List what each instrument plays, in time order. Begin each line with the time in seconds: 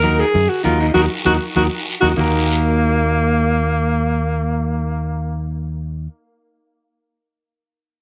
Already playing: fingered electric bass D#2, alto saxophone A#4
0.03 clean electric guitar D#4 F#4 A#4, high conga, short guiro
0.19 alto saxophone G#4, short guiro
0.34 fingered electric bass F#2, low conga, long guiro
0.49 alto saxophone F#4
0.64 fingered electric bass D#2, clean electric guitar D#4 F#4 A#4, alto saxophone F4, high conga, short guiro
0.80 alto saxophone D#4, short guiro
0.94 fingered electric bass D#2, clean electric guitar D#4 F#4 A#4, alto saxophone F#4, high conga, long guiro
1.25 fingered electric bass D#2, clean electric guitar D#4 F#4 A#4, alto saxophone F#4, high conga
1.56 fingered electric bass D#2, clean electric guitar D#4 F#4 A#4, alto saxophone F#4, high conga, long guiro
2.01 fingered electric bass D#2, clean electric guitar D#4 F#4 A#4, alto saxophone F#4, high conga, long guiro
2.17 fingered electric bass D#2, alto saxophone A#3, clean electric guitar D#4 F#4, low conga, long guiro
2.21 clean electric guitar A#4